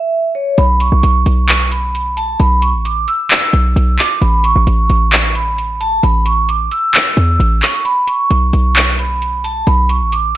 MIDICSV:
0, 0, Header, 1, 4, 480
1, 0, Start_track
1, 0, Tempo, 454545
1, 611, Time_signature, 4, 2, 24, 8
1, 10952, End_track
2, 0, Start_track
2, 0, Title_t, "Vibraphone"
2, 0, Program_c, 0, 11
2, 0, Note_on_c, 0, 76, 92
2, 330, Note_off_c, 0, 76, 0
2, 370, Note_on_c, 0, 73, 67
2, 598, Note_off_c, 0, 73, 0
2, 610, Note_on_c, 0, 83, 107
2, 838, Note_off_c, 0, 83, 0
2, 855, Note_on_c, 0, 85, 93
2, 1771, Note_off_c, 0, 85, 0
2, 1813, Note_on_c, 0, 83, 78
2, 2264, Note_off_c, 0, 83, 0
2, 2291, Note_on_c, 0, 81, 85
2, 2518, Note_off_c, 0, 81, 0
2, 2530, Note_on_c, 0, 83, 102
2, 2758, Note_off_c, 0, 83, 0
2, 2771, Note_on_c, 0, 85, 82
2, 2998, Note_off_c, 0, 85, 0
2, 3013, Note_on_c, 0, 86, 72
2, 3239, Note_off_c, 0, 86, 0
2, 3252, Note_on_c, 0, 88, 89
2, 4169, Note_off_c, 0, 88, 0
2, 4210, Note_on_c, 0, 86, 80
2, 4438, Note_off_c, 0, 86, 0
2, 4452, Note_on_c, 0, 83, 100
2, 4679, Note_off_c, 0, 83, 0
2, 4692, Note_on_c, 0, 85, 94
2, 5610, Note_off_c, 0, 85, 0
2, 5653, Note_on_c, 0, 83, 71
2, 6103, Note_off_c, 0, 83, 0
2, 6131, Note_on_c, 0, 81, 87
2, 6359, Note_off_c, 0, 81, 0
2, 6370, Note_on_c, 0, 83, 110
2, 6598, Note_off_c, 0, 83, 0
2, 6609, Note_on_c, 0, 85, 86
2, 6837, Note_off_c, 0, 85, 0
2, 6852, Note_on_c, 0, 86, 82
2, 7079, Note_off_c, 0, 86, 0
2, 7092, Note_on_c, 0, 88, 93
2, 8010, Note_off_c, 0, 88, 0
2, 8049, Note_on_c, 0, 85, 67
2, 8277, Note_off_c, 0, 85, 0
2, 8290, Note_on_c, 0, 83, 111
2, 8518, Note_off_c, 0, 83, 0
2, 8535, Note_on_c, 0, 85, 93
2, 9451, Note_off_c, 0, 85, 0
2, 9492, Note_on_c, 0, 83, 76
2, 9943, Note_off_c, 0, 83, 0
2, 9969, Note_on_c, 0, 81, 88
2, 10198, Note_off_c, 0, 81, 0
2, 10210, Note_on_c, 0, 83, 103
2, 10438, Note_off_c, 0, 83, 0
2, 10450, Note_on_c, 0, 85, 85
2, 10678, Note_off_c, 0, 85, 0
2, 10692, Note_on_c, 0, 86, 70
2, 10919, Note_off_c, 0, 86, 0
2, 10952, End_track
3, 0, Start_track
3, 0, Title_t, "808-style bass"
3, 0, Program_c, 1, 38
3, 612, Note_on_c, 1, 35, 116
3, 957, Note_off_c, 1, 35, 0
3, 972, Note_on_c, 1, 35, 102
3, 1087, Note_off_c, 1, 35, 0
3, 1091, Note_on_c, 1, 35, 110
3, 1322, Note_off_c, 1, 35, 0
3, 1331, Note_on_c, 1, 35, 106
3, 2489, Note_off_c, 1, 35, 0
3, 2531, Note_on_c, 1, 35, 113
3, 2892, Note_on_c, 1, 33, 97
3, 2907, Note_off_c, 1, 35, 0
3, 3233, Note_off_c, 1, 33, 0
3, 3731, Note_on_c, 1, 35, 103
3, 3962, Note_off_c, 1, 35, 0
3, 3972, Note_on_c, 1, 35, 113
3, 4202, Note_off_c, 1, 35, 0
3, 4451, Note_on_c, 1, 33, 117
3, 4797, Note_off_c, 1, 33, 0
3, 4812, Note_on_c, 1, 33, 107
3, 4927, Note_off_c, 1, 33, 0
3, 4931, Note_on_c, 1, 33, 105
3, 5162, Note_off_c, 1, 33, 0
3, 5171, Note_on_c, 1, 33, 101
3, 6329, Note_off_c, 1, 33, 0
3, 6371, Note_on_c, 1, 33, 116
3, 7062, Note_off_c, 1, 33, 0
3, 7571, Note_on_c, 1, 40, 102
3, 7801, Note_off_c, 1, 40, 0
3, 7811, Note_on_c, 1, 33, 110
3, 8042, Note_off_c, 1, 33, 0
3, 8771, Note_on_c, 1, 35, 104
3, 9002, Note_off_c, 1, 35, 0
3, 9011, Note_on_c, 1, 35, 109
3, 10169, Note_off_c, 1, 35, 0
3, 10211, Note_on_c, 1, 35, 111
3, 10571, Note_on_c, 1, 33, 102
3, 10587, Note_off_c, 1, 35, 0
3, 10913, Note_off_c, 1, 33, 0
3, 10952, End_track
4, 0, Start_track
4, 0, Title_t, "Drums"
4, 611, Note_on_c, 9, 42, 82
4, 717, Note_off_c, 9, 42, 0
4, 847, Note_on_c, 9, 42, 91
4, 953, Note_off_c, 9, 42, 0
4, 1091, Note_on_c, 9, 42, 85
4, 1196, Note_off_c, 9, 42, 0
4, 1330, Note_on_c, 9, 42, 79
4, 1435, Note_off_c, 9, 42, 0
4, 1571, Note_on_c, 9, 42, 82
4, 1572, Note_on_c, 9, 39, 114
4, 1677, Note_off_c, 9, 42, 0
4, 1678, Note_off_c, 9, 39, 0
4, 1812, Note_on_c, 9, 42, 86
4, 1917, Note_off_c, 9, 42, 0
4, 2056, Note_on_c, 9, 42, 79
4, 2162, Note_off_c, 9, 42, 0
4, 2291, Note_on_c, 9, 42, 82
4, 2397, Note_off_c, 9, 42, 0
4, 2532, Note_on_c, 9, 42, 83
4, 2637, Note_off_c, 9, 42, 0
4, 2767, Note_on_c, 9, 42, 88
4, 2873, Note_off_c, 9, 42, 0
4, 3010, Note_on_c, 9, 42, 84
4, 3116, Note_off_c, 9, 42, 0
4, 3250, Note_on_c, 9, 42, 78
4, 3355, Note_off_c, 9, 42, 0
4, 3491, Note_on_c, 9, 42, 79
4, 3492, Note_on_c, 9, 39, 121
4, 3596, Note_off_c, 9, 42, 0
4, 3597, Note_off_c, 9, 39, 0
4, 3732, Note_on_c, 9, 42, 85
4, 3837, Note_off_c, 9, 42, 0
4, 3976, Note_on_c, 9, 42, 78
4, 4082, Note_off_c, 9, 42, 0
4, 4212, Note_on_c, 9, 39, 68
4, 4212, Note_on_c, 9, 42, 83
4, 4317, Note_off_c, 9, 39, 0
4, 4317, Note_off_c, 9, 42, 0
4, 4452, Note_on_c, 9, 42, 78
4, 4557, Note_off_c, 9, 42, 0
4, 4687, Note_on_c, 9, 42, 88
4, 4793, Note_off_c, 9, 42, 0
4, 4931, Note_on_c, 9, 42, 84
4, 5036, Note_off_c, 9, 42, 0
4, 5169, Note_on_c, 9, 42, 78
4, 5275, Note_off_c, 9, 42, 0
4, 5411, Note_on_c, 9, 39, 113
4, 5411, Note_on_c, 9, 42, 83
4, 5516, Note_off_c, 9, 42, 0
4, 5517, Note_off_c, 9, 39, 0
4, 5652, Note_on_c, 9, 42, 88
4, 5757, Note_off_c, 9, 42, 0
4, 5896, Note_on_c, 9, 42, 77
4, 6001, Note_off_c, 9, 42, 0
4, 6131, Note_on_c, 9, 42, 81
4, 6237, Note_off_c, 9, 42, 0
4, 6371, Note_on_c, 9, 42, 81
4, 6477, Note_off_c, 9, 42, 0
4, 6607, Note_on_c, 9, 42, 87
4, 6712, Note_off_c, 9, 42, 0
4, 6850, Note_on_c, 9, 42, 85
4, 6956, Note_off_c, 9, 42, 0
4, 7089, Note_on_c, 9, 42, 78
4, 7195, Note_off_c, 9, 42, 0
4, 7331, Note_on_c, 9, 42, 85
4, 7332, Note_on_c, 9, 39, 119
4, 7436, Note_off_c, 9, 42, 0
4, 7437, Note_off_c, 9, 39, 0
4, 7572, Note_on_c, 9, 42, 88
4, 7677, Note_off_c, 9, 42, 0
4, 7816, Note_on_c, 9, 42, 77
4, 7921, Note_off_c, 9, 42, 0
4, 8051, Note_on_c, 9, 39, 69
4, 8051, Note_on_c, 9, 46, 89
4, 8157, Note_off_c, 9, 39, 0
4, 8157, Note_off_c, 9, 46, 0
4, 8291, Note_on_c, 9, 42, 83
4, 8397, Note_off_c, 9, 42, 0
4, 8527, Note_on_c, 9, 42, 89
4, 8633, Note_off_c, 9, 42, 0
4, 8770, Note_on_c, 9, 42, 86
4, 8876, Note_off_c, 9, 42, 0
4, 9009, Note_on_c, 9, 42, 80
4, 9115, Note_off_c, 9, 42, 0
4, 9250, Note_on_c, 9, 42, 80
4, 9251, Note_on_c, 9, 39, 116
4, 9356, Note_off_c, 9, 42, 0
4, 9357, Note_off_c, 9, 39, 0
4, 9491, Note_on_c, 9, 42, 86
4, 9597, Note_off_c, 9, 42, 0
4, 9735, Note_on_c, 9, 42, 76
4, 9841, Note_off_c, 9, 42, 0
4, 9971, Note_on_c, 9, 42, 84
4, 10077, Note_off_c, 9, 42, 0
4, 10211, Note_on_c, 9, 42, 81
4, 10317, Note_off_c, 9, 42, 0
4, 10447, Note_on_c, 9, 42, 89
4, 10553, Note_off_c, 9, 42, 0
4, 10690, Note_on_c, 9, 42, 87
4, 10796, Note_off_c, 9, 42, 0
4, 10952, End_track
0, 0, End_of_file